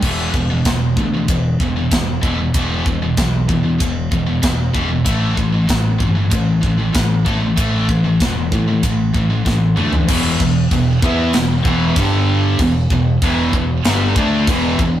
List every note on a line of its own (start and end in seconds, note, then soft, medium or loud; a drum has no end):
0.02 0.32 E1 medium
0.02 0.33 E2 medium
0.02 0.33 B2 medium
0.02 0.33 E3 loud
0.02 kick loud
0.02 crash medium
0.34 0.63 E1 medium
0.34 0.50 E2 medium
0.34 0.49 B2 medium
0.34 kick medium
0.50 0.65 E2 medium
0.50 0.66 B2 medium
0.65 0.95 E1 medium
0.65 0.94 E2 medium
0.65 0.95 B2 medium
0.65 kick loud
0.65 snare loud
0.65 ride bell medium
0.96 1.26 D2 medium
0.96 1.13 E2 medium
0.96 1.13 B2 medium
0.96 kick medium
1.14 1.28 E2 medium
1.14 1.28 B2 medium
1.28 1.58 E1 medium
1.28 1.57 E2 medium
1.28 1.58 B2 medium
1.28 kick loud
1.28 ride bell medium
1.60 1.89 E1 medium
1.60 1.75 E2 medium
1.60 1.75 B2 medium
1.60 kick medium
1.76 1.90 E2 medium
1.76 1.90 B2 medium
1.91 2.21 E1 medium
1.91 2.20 E2 medium
1.91 2.20 B2 medium
1.91 kick loud
1.91 snare loud
1.91 ride bell medium
2.21 2.52 E1 medium
2.21 2.36 E2 medium
2.21 2.37 B2 medium
2.21 2.37 E3 medium
2.21 kick medium
2.39 2.53 E2 medium
2.39 2.53 B2 medium
2.54 3.14 E1 medium
2.54 2.84 E2 medium
2.54 2.84 B2 medium
2.54 2.85 E3 medium
2.54 kick loud
2.54 ride bell medium
2.86 3.01 E2 medium
2.86 3.01 B2 medium
2.86 kick medium
3.02 3.17 E2 medium
3.02 3.17 B2 medium
3.17 3.47 B1 medium
3.17 3.46 E2 medium
3.17 3.46 B2 medium
3.17 kick loud
3.17 snare loud
3.17 ride bell medium
3.49 3.78 E2 medium
3.49 3.63 E2 medium
3.49 3.63 B2 medium
3.49 kick medium
3.64 3.78 E2 medium
3.64 3.79 B2 medium
3.80 4.09 E1 medium
3.80 4.08 E2 medium
3.80 4.09 B2 medium
3.80 kick loud
3.80 ride bell medium
4.12 4.41 E1 medium
4.12 4.26 E2 medium
4.12 4.25 B2 medium
4.12 kick medium
4.27 4.41 E2 medium
4.27 4.41 B2 medium
4.42 4.72 E1 medium
4.42 4.71 E2 medium
4.42 4.71 B2 medium
4.42 kick loud
4.42 snare loud
4.42 ride bell medium
4.73 5.03 E1 medium
4.73 4.88 E2 medium
4.73 4.88 B2 medium
4.73 4.88 E3 loud
4.73 kick medium
4.89 5.06 E2 medium
4.89 5.04 B2 medium
5.05 5.35 A1 medium
5.05 5.35 A2 medium
5.05 5.35 E3 loud
5.05 5.35 A3 medium
5.05 kick loud
5.05 ride bell medium
5.37 5.67 A1 medium
5.37 5.52 A2 medium
5.37 5.51 E3 medium
5.37 kick medium
5.53 5.66 A2 medium
5.53 5.67 E3 medium
5.67 5.98 A1 medium
5.67 5.97 A2 medium
5.67 5.97 E3 medium
5.67 kick loud
5.67 snare loud
5.67 ride bell medium
5.99 6.30 G1 medium
5.99 6.14 A2 medium
5.99 6.14 E3 medium
5.99 kick medium
6.15 6.29 A2 medium
6.15 6.29 E3 medium
6.30 6.61 A1 medium
6.30 6.59 A2 medium
6.30 6.59 E3 medium
6.30 kick loud
6.30 ride bell medium
6.61 6.92 A1 medium
6.61 6.77 A2 medium
6.61 6.77 E3 medium
6.61 kick medium
6.78 6.92 A2 medium
6.78 6.93 E3 medium
6.93 7.24 A1 medium
6.93 7.22 A2 medium
6.93 7.23 E3 medium
6.93 kick loud
6.93 snare loud
6.93 ride bell medium
7.25 7.55 A1 medium
7.25 7.39 A2 medium
7.25 7.40 E3 medium
7.25 7.40 A3 medium
7.25 kick medium
7.41 7.55 A2 medium
7.41 7.56 E3 medium
7.56 8.17 A1 medium
7.56 7.87 A2 medium
7.56 7.87 E3 medium
7.56 7.87 A3 medium
7.56 kick loud
7.56 ride bell medium
7.89 8.04 A2 medium
7.89 8.03 E3 medium
7.89 kick medium
8.04 8.20 A2 medium
8.04 8.20 E3 medium
8.20 8.50 E1 medium
8.20 8.49 A2 medium
8.20 8.49 E3 medium
8.20 kick loud
8.20 snare loud
8.20 ride bell medium
8.52 8.81 A2 medium
8.52 8.68 A2 medium
8.52 8.67 E3 medium
8.52 kick medium
8.68 8.82 A2 medium
8.68 8.83 E3 medium
8.83 9.12 A1 medium
8.83 9.12 A2 medium
8.83 9.12 E3 medium
8.83 kick loud
8.83 ride bell medium
9.14 9.44 A1 medium
9.14 9.29 A2 medium
9.14 9.29 E3 medium
9.14 kick medium
9.30 9.44 A2 medium
9.30 9.44 E3 medium
9.45 9.75 A1 medium
9.45 9.74 A2 medium
9.45 9.74 E3 medium
9.45 kick loud
9.45 snare medium
9.76 10.07 D2 medium
9.76 9.91 A2 medium
9.76 9.91 E3 medium
9.76 9.91 A3 medium
9.76 mid tom medium
9.93 10.09 A2 medium
9.93 10.08 E3 medium
9.93 floor tom medium
10.08 10.38 E1 medium
10.08 10.39 E2 medium
10.08 10.40 B2 medium
10.08 10.40 E3 loud
10.08 kick loud
10.08 crash loud
10.08 crash medium
10.40 10.69 E1 medium
10.40 10.66 E2 medium
10.40 10.66 B2 medium
10.40 kick loud
10.71 11.01 E1 medium
10.71 10.97 E2 medium
10.71 10.97 B2 medium
10.71 kick medium
10.71 crash medium
11.02 11.32 E2 loud
11.02 11.34 E3 loud
11.02 11.34 B3 loud
11.02 11.34 E4 loud
11.02 kick loud
11.33 11.64 E1 medium
11.33 11.59 E2 medium
11.33 11.60 B2 medium
11.33 snare loud
11.33 crash medium
11.65 11.95 E1 loud
11.65 11.96 E2 medium
11.65 11.97 B2 loud
11.65 11.97 E3 loud
11.65 kick loud
11.96 12.55 G1 medium
11.96 12.59 G2 loud
11.96 12.59 D3 medium
11.96 12.60 G3 loud
11.96 kick loud
11.96 crash medium
12.59 12.89 E1 medium
12.59 12.85 E2 medium
12.59 12.85 B2 medium
12.59 kick loud
12.59 crash medium
12.90 13.20 E1 medium
12.90 13.17 E2 medium
12.90 13.17 B2 medium
12.90 kick loud
13.22 13.52 E1 loud
13.22 13.53 E2 loud
13.22 13.54 B2 loud
13.22 13.54 E3 loud
13.22 kick loud
13.22 crash medium
13.53 13.83 E1 medium
13.53 13.79 E2 medium
13.53 13.79 B2 medium
13.53 kick medium
13.84 14.15 G1 medium
13.84 14.16 G2 loud
13.84 14.15 D3 medium
13.84 14.16 G3 loud
13.84 snare loud
13.84 crash medium
14.16 14.45 D2 loud
14.16 14.47 D3 medium
14.16 14.47 A3 loud
14.16 14.47 D4 loud
14.16 kick loud
14.47 14.77 E1 medium
14.47 14.79 E2 medium
14.47 14.79 B2 medium
14.47 14.79 E3 loud
14.47 kick loud
14.47 crash medium
14.79 15.00 E1 medium
14.79 15.00 E2 medium
14.79 15.00 B2 medium
14.79 kick loud